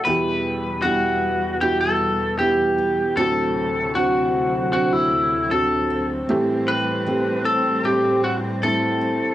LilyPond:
<<
  \new Staff \with { instrumentName = "Lead electric guitar" } { \time 4/4 \key e \minor \tempo 4 = 77 b'4 fis'4 g'16 a'8. g'4 | a'4 fis'4 fis'16 e'8. a'8. r16 | r8 b'4 a'8 g'8 fis'8 a'4 | }
  \new Staff \with { instrumentName = "Upright piano" } { \time 4/4 \key e \minor <b e' g'>4 <g b e'>4 <b e' fis'>4 <b e' g'>4 | <c' d' fis'>4 <c' d' fis'>4 <c' d' fis'>4 <c' d' fis'>4 | <a c' g'>4 <a c' g'>4 <g a c'>4 <a c' e'>4 | }
  \new Staff \with { instrumentName = "Upright piano" } { \clef bass \time 4/4 \key e \minor <e, b,>1 | <d, a,>1 | <a, e>1 | }
  \new Staff \with { instrumentName = "Steel-string acoustic guitar" } { \time 4/4 \key e \minor e,4 <g b e'>4 b4 g8 b8 | d4 <a c' fis'>4 c'4 a8 c'8 | a,4 <g c'>4 c'4 g8 c'8 | }
  \new Staff \with { instrumentName = "String section" } { \clef bass \time 4/4 \key e \minor <e, b, g>1 | <d, c fis>1 | <a, g c'>1 | }
>>